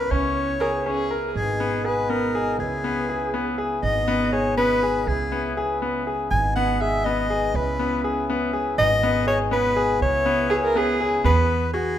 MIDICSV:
0, 0, Header, 1, 6, 480
1, 0, Start_track
1, 0, Tempo, 495050
1, 112, Time_signature, 5, 3, 24, 8
1, 11622, End_track
2, 0, Start_track
2, 0, Title_t, "Soprano saxophone"
2, 0, Program_c, 0, 64
2, 0, Note_on_c, 0, 71, 85
2, 108, Note_on_c, 0, 73, 79
2, 122, Note_off_c, 0, 71, 0
2, 1073, Note_off_c, 0, 73, 0
2, 1325, Note_on_c, 0, 68, 86
2, 1799, Note_on_c, 0, 71, 84
2, 1814, Note_off_c, 0, 68, 0
2, 2038, Note_on_c, 0, 70, 85
2, 2053, Note_off_c, 0, 71, 0
2, 2514, Note_off_c, 0, 70, 0
2, 2520, Note_on_c, 0, 68, 77
2, 3442, Note_off_c, 0, 68, 0
2, 3711, Note_on_c, 0, 75, 94
2, 4193, Note_on_c, 0, 73, 88
2, 4207, Note_off_c, 0, 75, 0
2, 4429, Note_off_c, 0, 73, 0
2, 4434, Note_on_c, 0, 71, 96
2, 4922, Note_on_c, 0, 68, 75
2, 4937, Note_off_c, 0, 71, 0
2, 5401, Note_off_c, 0, 68, 0
2, 6117, Note_on_c, 0, 80, 83
2, 6341, Note_off_c, 0, 80, 0
2, 6360, Note_on_c, 0, 78, 85
2, 6603, Note_on_c, 0, 76, 87
2, 6617, Note_off_c, 0, 78, 0
2, 6836, Note_on_c, 0, 75, 81
2, 6850, Note_off_c, 0, 76, 0
2, 7327, Note_on_c, 0, 71, 75
2, 7342, Note_off_c, 0, 75, 0
2, 7802, Note_off_c, 0, 71, 0
2, 8518, Note_on_c, 0, 75, 108
2, 8962, Note_off_c, 0, 75, 0
2, 8996, Note_on_c, 0, 73, 88
2, 9103, Note_off_c, 0, 73, 0
2, 9239, Note_on_c, 0, 71, 92
2, 9682, Note_off_c, 0, 71, 0
2, 9718, Note_on_c, 0, 73, 96
2, 10395, Note_off_c, 0, 73, 0
2, 10912, Note_on_c, 0, 71, 80
2, 11356, Note_off_c, 0, 71, 0
2, 11380, Note_on_c, 0, 68, 78
2, 11622, Note_off_c, 0, 68, 0
2, 11622, End_track
3, 0, Start_track
3, 0, Title_t, "Viola"
3, 0, Program_c, 1, 41
3, 584, Note_on_c, 1, 70, 82
3, 695, Note_off_c, 1, 70, 0
3, 837, Note_on_c, 1, 68, 81
3, 1283, Note_off_c, 1, 68, 0
3, 10180, Note_on_c, 1, 68, 88
3, 10236, Note_off_c, 1, 68, 0
3, 10318, Note_on_c, 1, 70, 98
3, 10442, Note_on_c, 1, 68, 94
3, 10457, Note_off_c, 1, 70, 0
3, 10915, Note_off_c, 1, 68, 0
3, 11622, End_track
4, 0, Start_track
4, 0, Title_t, "Grand piano"
4, 0, Program_c, 2, 0
4, 107, Note_on_c, 2, 61, 70
4, 482, Note_off_c, 2, 61, 0
4, 595, Note_on_c, 2, 68, 64
4, 781, Note_off_c, 2, 68, 0
4, 835, Note_on_c, 2, 61, 62
4, 1021, Note_off_c, 2, 61, 0
4, 1072, Note_on_c, 2, 70, 61
4, 1259, Note_off_c, 2, 70, 0
4, 1552, Note_on_c, 2, 59, 71
4, 1740, Note_off_c, 2, 59, 0
4, 1793, Note_on_c, 2, 68, 60
4, 1980, Note_off_c, 2, 68, 0
4, 2033, Note_on_c, 2, 59, 67
4, 2221, Note_off_c, 2, 59, 0
4, 2278, Note_on_c, 2, 68, 70
4, 2464, Note_off_c, 2, 68, 0
4, 2755, Note_on_c, 2, 59, 73
4, 2942, Note_off_c, 2, 59, 0
4, 2997, Note_on_c, 2, 68, 66
4, 3184, Note_off_c, 2, 68, 0
4, 3236, Note_on_c, 2, 59, 71
4, 3423, Note_off_c, 2, 59, 0
4, 3472, Note_on_c, 2, 68, 71
4, 3661, Note_off_c, 2, 68, 0
4, 3953, Note_on_c, 2, 59, 81
4, 4142, Note_off_c, 2, 59, 0
4, 4198, Note_on_c, 2, 68, 67
4, 4385, Note_off_c, 2, 68, 0
4, 4436, Note_on_c, 2, 59, 80
4, 4624, Note_off_c, 2, 59, 0
4, 4684, Note_on_c, 2, 68, 66
4, 4868, Note_off_c, 2, 68, 0
4, 5156, Note_on_c, 2, 59, 68
4, 5344, Note_off_c, 2, 59, 0
4, 5403, Note_on_c, 2, 68, 70
4, 5588, Note_off_c, 2, 68, 0
4, 5643, Note_on_c, 2, 59, 72
4, 5828, Note_off_c, 2, 59, 0
4, 5885, Note_on_c, 2, 68, 63
4, 6069, Note_off_c, 2, 68, 0
4, 6365, Note_on_c, 2, 59, 75
4, 6548, Note_off_c, 2, 59, 0
4, 6607, Note_on_c, 2, 68, 60
4, 6790, Note_off_c, 2, 68, 0
4, 6845, Note_on_c, 2, 59, 68
4, 7028, Note_off_c, 2, 59, 0
4, 7080, Note_on_c, 2, 68, 66
4, 7265, Note_off_c, 2, 68, 0
4, 7557, Note_on_c, 2, 59, 71
4, 7743, Note_off_c, 2, 59, 0
4, 7799, Note_on_c, 2, 68, 66
4, 7984, Note_off_c, 2, 68, 0
4, 8044, Note_on_c, 2, 59, 75
4, 8227, Note_off_c, 2, 59, 0
4, 8274, Note_on_c, 2, 68, 66
4, 8460, Note_off_c, 2, 68, 0
4, 8758, Note_on_c, 2, 59, 80
4, 8943, Note_off_c, 2, 59, 0
4, 8987, Note_on_c, 2, 68, 64
4, 9176, Note_off_c, 2, 68, 0
4, 9223, Note_on_c, 2, 59, 73
4, 9413, Note_off_c, 2, 59, 0
4, 9466, Note_on_c, 2, 68, 77
4, 9654, Note_off_c, 2, 68, 0
4, 9945, Note_on_c, 2, 59, 80
4, 10133, Note_off_c, 2, 59, 0
4, 10185, Note_on_c, 2, 68, 72
4, 10373, Note_off_c, 2, 68, 0
4, 10427, Note_on_c, 2, 59, 72
4, 10614, Note_off_c, 2, 59, 0
4, 10671, Note_on_c, 2, 68, 75
4, 10856, Note_off_c, 2, 68, 0
4, 10902, Note_on_c, 2, 59, 77
4, 11276, Note_off_c, 2, 59, 0
4, 11383, Note_on_c, 2, 66, 61
4, 11570, Note_off_c, 2, 66, 0
4, 11622, End_track
5, 0, Start_track
5, 0, Title_t, "Harmonium"
5, 0, Program_c, 3, 20
5, 0, Note_on_c, 3, 59, 62
5, 0, Note_on_c, 3, 64, 71
5, 109, Note_on_c, 3, 49, 59
5, 1291, Note_off_c, 3, 64, 0
5, 1293, Note_off_c, 3, 59, 0
5, 1302, Note_off_c, 3, 49, 0
5, 1314, Note_on_c, 3, 56, 61
5, 1314, Note_on_c, 3, 63, 67
5, 1319, Note_on_c, 3, 47, 62
5, 2497, Note_on_c, 3, 64, 72
5, 2500, Note_on_c, 3, 49, 65
5, 2505, Note_off_c, 3, 56, 0
5, 2505, Note_off_c, 3, 63, 0
5, 2508, Note_off_c, 3, 47, 0
5, 2510, Note_on_c, 3, 59, 60
5, 3697, Note_off_c, 3, 64, 0
5, 3699, Note_off_c, 3, 49, 0
5, 3703, Note_off_c, 3, 59, 0
5, 3715, Note_on_c, 3, 47, 72
5, 3717, Note_on_c, 3, 56, 60
5, 3718, Note_on_c, 3, 63, 76
5, 4906, Note_off_c, 3, 47, 0
5, 4907, Note_off_c, 3, 56, 0
5, 4907, Note_off_c, 3, 63, 0
5, 4910, Note_on_c, 3, 49, 68
5, 4910, Note_on_c, 3, 59, 59
5, 4916, Note_on_c, 3, 64, 73
5, 6103, Note_off_c, 3, 49, 0
5, 6103, Note_off_c, 3, 59, 0
5, 6106, Note_off_c, 3, 64, 0
5, 6138, Note_on_c, 3, 63, 68
5, 6139, Note_on_c, 3, 47, 64
5, 6142, Note_on_c, 3, 56, 64
5, 7316, Note_off_c, 3, 47, 0
5, 7316, Note_off_c, 3, 63, 0
5, 7318, Note_off_c, 3, 56, 0
5, 7324, Note_on_c, 3, 59, 60
5, 7325, Note_on_c, 3, 64, 84
5, 7327, Note_on_c, 3, 49, 69
5, 8507, Note_off_c, 3, 59, 0
5, 8507, Note_off_c, 3, 64, 0
5, 8508, Note_off_c, 3, 49, 0
5, 8527, Note_on_c, 3, 63, 74
5, 8529, Note_on_c, 3, 56, 64
5, 8531, Note_on_c, 3, 47, 63
5, 9705, Note_on_c, 3, 59, 63
5, 9707, Note_off_c, 3, 63, 0
5, 9708, Note_off_c, 3, 56, 0
5, 9709, Note_off_c, 3, 47, 0
5, 9710, Note_on_c, 3, 64, 84
5, 9711, Note_on_c, 3, 49, 64
5, 10894, Note_off_c, 3, 59, 0
5, 10896, Note_off_c, 3, 64, 0
5, 10897, Note_off_c, 3, 49, 0
5, 11622, End_track
6, 0, Start_track
6, 0, Title_t, "Upright bass"
6, 0, Program_c, 4, 32
6, 106, Note_on_c, 4, 37, 66
6, 1288, Note_off_c, 4, 37, 0
6, 1313, Note_on_c, 4, 32, 68
6, 2493, Note_off_c, 4, 32, 0
6, 2509, Note_on_c, 4, 37, 67
6, 3691, Note_off_c, 4, 37, 0
6, 3713, Note_on_c, 4, 32, 71
6, 4893, Note_off_c, 4, 32, 0
6, 4915, Note_on_c, 4, 37, 72
6, 6093, Note_off_c, 4, 37, 0
6, 6118, Note_on_c, 4, 32, 70
6, 7294, Note_off_c, 4, 32, 0
6, 7314, Note_on_c, 4, 37, 72
6, 8490, Note_off_c, 4, 37, 0
6, 8515, Note_on_c, 4, 32, 73
6, 9688, Note_off_c, 4, 32, 0
6, 9706, Note_on_c, 4, 37, 73
6, 10882, Note_off_c, 4, 37, 0
6, 10901, Note_on_c, 4, 40, 76
6, 11622, Note_off_c, 4, 40, 0
6, 11622, End_track
0, 0, End_of_file